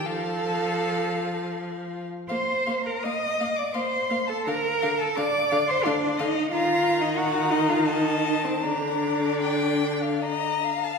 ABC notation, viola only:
X:1
M:3/4
L:1/8
Q:1/4=82
K:Bb
V:1 name="Viola" clef=bass
F,4- F, z | B, B, B, B, B, B, | D, D, D, D, D, D, | E,6 |
D,4- D, z |]